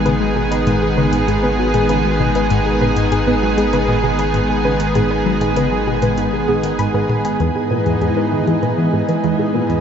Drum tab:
HH |x--xx--xx--xx--x|x--xx--xx--xx--x|x--xx--xx--xx--x|x--xx--xx--xx--x|
T1 |o---o--o---o--o-|--o--o---o--o---|o--o---o--o---o-|--o---o--o---o--|